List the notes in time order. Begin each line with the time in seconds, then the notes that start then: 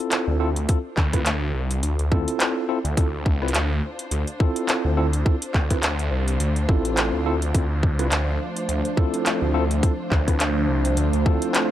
Already playing: C4 D4 E4 F4 A4 C5
0.12 clap, closed hi-hat
0.27 D2
0.40 C4 E4 F4 A4
0.56 closed hi-hat
0.69 C4 E4 F4 A4, kick, closed hi-hat
0.97 D2, kick, clap
1.13 C4 E4 F4 B4, kick, cross-stick, closed hi-hat
1.26 D2, clap, closed hi-hat
1.54 C2
1.71 closed hi-hat
1.83 D2, closed hi-hat
1.99 D2, closed hi-hat
2.12 C4 E4 F4 A4, kick
2.28 closed hi-hat
2.40 clap, closed hi-hat
2.69 C4 E4 F4 A4
2.84 D2, closed hi-hat
2.97 D2 C4 E4 F4 A4, kick, closed hi-hat
3.26 kick
3.42 C4 E4 F4 B4, cross-stick
3.48 closed hi-hat
3.54 D2, clap, closed hi-hat
3.99 closed hi-hat
4.11 D2, closed hi-hat
4.27 closed hi-hat
4.40 C4 E4 F4 A4, kick
4.56 closed hi-hat
4.69 clap, closed hi-hat
4.85 D2
4.97 C4 E4 F4 A4
5.13 closed hi-hat
5.25 C4 E4 F4 A4, kick
5.42 closed hi-hat
5.54 D2, kick, clap
5.70 C4 E4 F4 B4, kick, cross-stick, closed hi-hat
5.83 D2, clap, closed hi-hat
5.99 closed hi-hat
6.11 C2
6.28 closed hi-hat
6.40 D2, closed hi-hat
6.56 closed hi-hat
6.69 A1 C4 E4 F4 A4, kick
6.85 closed hi-hat
6.97 clap, closed hi-hat
7.13 D2
7.26 C4 E4 F4 A4
7.42 closed hi-hat
7.54 D2 F3 A3 C4 D4 E4 F4 A4 C5, kick, closed hi-hat
7.83 kick
7.99 C4 E4 F4 B4, cross-stick, closed hi-hat
8.11 D2, clap, closed hi-hat
8.56 closed hi-hat
8.68 D2, closed hi-hat
8.85 closed hi-hat
8.97 C4 E4 F4 A4, kick
9.14 closed hi-hat
9.26 clap, closed hi-hat
9.42 D2
9.54 C4 E4 F4 A4
9.71 closed hi-hat
9.83 C4 E4 F4 A4, kick, closed hi-hat
10.11 D2, kick, clap
10.27 C4 E4 F4 B4, kick, cross-stick, closed hi-hat
10.40 D2, clap, closed hi-hat
10.69 C2
10.85 closed hi-hat
10.97 D2, closed hi-hat
11.13 D2, closed hi-hat
11.26 C4 E4 F4 A4, kick
11.42 closed hi-hat
11.54 clap, closed hi-hat